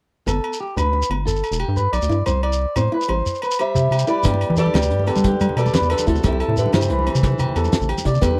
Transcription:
0.27 G1 B3 A4, low agogo, shekere
0.44 low agogo
0.53 shekere
0.60 G4
0.77 D2 D4 B4, low agogo, shekere
0.93 D4
1.02 shekere
1.10 G1 B3, low agogo
1.27 A4, shekere
1.36 shekere
1.44 low agogo, shekere
1.52 E1, shekere
1.60 G4, low agogo
1.68 G2
1.77 B4, shekere
1.93 B1 D5, low agogo, shekere
2.02 D2, shekere
2.09 G2 E4, shekere
2.26 C2 C4 C5, low agogo, shekere
2.43 D5, low agogo
2.52 shekere
2.76 A2 C4 C5, low agogo, shekere
2.92 E4 B4
3.02 shekere
3.08 A1 G3 C5, low agogo
3.26 shekere
3.35 shekere
3.42 B4, low agogo, shekere
3.51 shekere
3.59 G3 C5 E5, muted clean electric guitar stroke, low agogo, shekere
3.75 C3, shekere
3.91 C3 G4, low agogo, shekere
3.99 shekere
4.07 G3 E4 B4 D5, shekere
4.23 G2 B3 G4, kick, closed hi-hat, muted conga, low agogo, shekere
4.34 high conga
4.41 closed hi-hat, low agogo
4.50 E3, low conga
4.57 G3 A4 B4 D5, closed hi-hat, shekere
4.66 high conga
4.74 D2 D4 G4, snare, closed hi-hat, muted conga, low agogo
4.82 low conga, shekere
4.90 G2 D4, closed hi-hat
4.99 high conga
5.06 D3 B3 G4 A4 B4, snare, closed hi-hat, low agogo
5.16 G3, low conga, shekere
5.24 G4, kick, closed hi-hat, muted conga, shekere
5.32 high conga
5.41 G3, closed hi-hat, low agogo, shekere
5.49 low conga
5.57 B2 G3 A4 B4 D5, closed hi-hat, low agogo, shekere
5.66 high conga, shekere
5.74 B4, snare, closed hi-hat, muted conga, shekere
5.82 E2, low conga, shekere
5.90 D3 G4 A4 B4, closed hi-hat, low agogo
5.98 high conga, low conga, shekere
6.07 D2 C3 E4 F#4 A4, kick, closed hi-hat, shekere
6.15 low conga, shekere
6.23 C2 C3 C4 G4 A4, kick, closed hi-hat, muted conga, low agogo, shekere
6.27 E4
6.32 high conga
6.40 A4, closed hi-hat, low agogo
6.48 A2, low conga
6.57 D3 G4 B4, closed hi-hat, shekere
6.66 high conga
6.72 G2 E3 E4 G4 C5, snare, closed hi-hat, muted conga, low agogo
6.81 low conga, shekere
6.90 C2 E4 B4, closed hi-hat
6.99 high conga
7.07 C4, muted clean electric guitar stroke, closed hi-hat, low agogo
7.15 C3, low conga, shekere
7.23 kick, closed hi-hat, muted conga, shekere
7.32 high conga
7.39 C3 G4, closed hi-hat, low agogo, shekere
7.49 low conga
7.56 E2 A4, closed hi-hat, low agogo, shekere
7.64 high conga, shekere
7.73 snare, closed hi-hat, muted conga, shekere
7.81 A1, low conga, shekere
7.89 G4, closed hi-hat, low agogo
7.98 high conga, low conga, shekere
8.05 C3 D5, muted nylon-string guitar stroke, kick, closed hi-hat, shekere
8.14 low conga, shekere
8.21 E2 D3 B3 G4 B4, kick, closed hi-hat, muted conga, low agogo, shekere
8.31 high conga

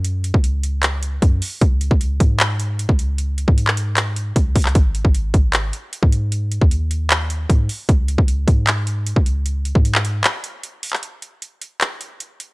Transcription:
Already playing: F#2
0.04 closed hi-hat
0.24 closed hi-hat
0.34 C#2, kick
0.44 closed hi-hat
0.63 closed hi-hat
0.83 clap, closed hi-hat
1.03 closed hi-hat
1.22 F#2, kick, closed hi-hat
1.42 open hi-hat
1.61 C#2, kick, closed hi-hat
1.81 closed hi-hat
1.91 C#2, kick
2.01 closed hi-hat
2.20 G#2, kick, closed hi-hat
2.40 clap, closed hi-hat
2.60 closed hi-hat
2.79 closed hi-hat
2.89 C#2, kick
2.99 closed hi-hat
3.18 closed hi-hat
3.38 closed hi-hat
3.48 G#2, kick
3.58 closed hi-hat
3.67 clap
3.77 closed hi-hat
3.97 clap, closed hi-hat
4.16 closed hi-hat
4.36 C#2, kick, closed hi-hat
4.56 C#2, kick, closed hi-hat, open hi-hat
4.62 clap, closed hi-hat
4.69 closed hi-hat
4.75 G#1, kick, closed hi-hat
4.95 closed hi-hat
5.05 G#1, kick
5.15 closed hi-hat
5.34 G#1, kick, closed hi-hat
5.53 clap, closed hi-hat
5.73 closed hi-hat
5.93 closed hi-hat
6.03 G#2, kick
6.12 closed hi-hat
6.32 closed hi-hat
6.52 closed hi-hat
6.61 D#2, kick
6.71 closed hi-hat
6.91 closed hi-hat
7.10 clap, closed hi-hat
7.30 closed hi-hat
7.50 G#2, kick, closed hi-hat
7.69 open hi-hat
7.89 C#2, kick, closed hi-hat
8.08 closed hi-hat
8.18 C#2, kick
8.28 closed hi-hat
8.48 G#2, kick, closed hi-hat
8.67 clap, closed hi-hat
8.87 closed hi-hat
9.06 closed hi-hat
9.16 C#2, kick
9.26 closed hi-hat
9.46 closed hi-hat
9.65 closed hi-hat
9.75 G#2, kick
9.85 closed hi-hat
9.95 clap
10.05 closed hi-hat
10.24 clap, closed hi-hat
10.44 closed hi-hat
10.63 closed hi-hat
10.83 closed hi-hat, open hi-hat
10.90 clap, closed hi-hat
10.96 closed hi-hat
11.03 closed hi-hat
11.22 closed hi-hat
11.42 closed hi-hat
11.62 closed hi-hat
11.81 clap, closed hi-hat
12.01 closed hi-hat
12.20 closed hi-hat
12.40 closed hi-hat

